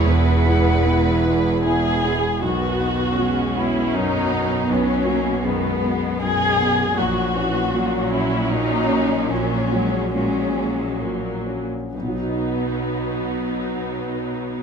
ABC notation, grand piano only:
X:1
M:3/4
L:1/8
Q:1/4=76
K:B
V:1 name="Grand piano" clef=bass
E,, [G,E] [B,E] [G,E] [B,E] [G,E] | B,,, B, F, B, F,, B, | B,,, F, F,, B, F,, B, | A,,, C F, C A,, C |
A,,, F, A,, C A,, C | [B,,,B,,F,DFd]6 |]